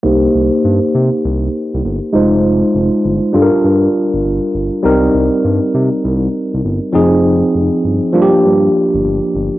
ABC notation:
X:1
M:4/4
L:1/16
Q:"Swing 16ths" 1/4=100
K:Cm
V:1 name="Tine electric piano"
[B,EGc]12- [B,EGc]2 [A,EFc]2- | [A,EFc]6 [G,DF=AB]8- [G,DFAB]2 | [G,CEB]12- [G,CEB]2 [F,CEA]2- | [F,CEA]6 [F,B,DFG]8- [F,B,DFG]2 |]
V:2 name="Analog synth bass" clef=bass
C,,2 C,, z G,, z C, z C,,2 z C,, G,,, z F,,,2- | F,,,2 F,,, z G,,, z G,, z G,,2 z G,,, G,,, z G,,, z | C,,2 C,, z G,, z C, z C,,2 z C,, G,,, z F,,,2- | F,,,2 F,,, z G,,, z G,, z G,,2 z G,,, G,,, z G,,, z |]